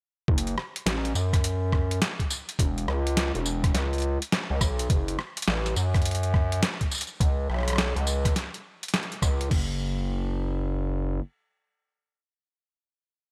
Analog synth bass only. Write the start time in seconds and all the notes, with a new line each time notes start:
0.28 F#1
0.86 A1
1.15 F#2
2.59 E1
2.88 C#2
3.35 E1
3.74 C#2
4.50 C#2
4.61 B1
4.90 F#1
5.48 A1
5.76 F#2
7.20 C#2
7.49 B1
7.96 C#2
9.22 C#2
9.51 F#1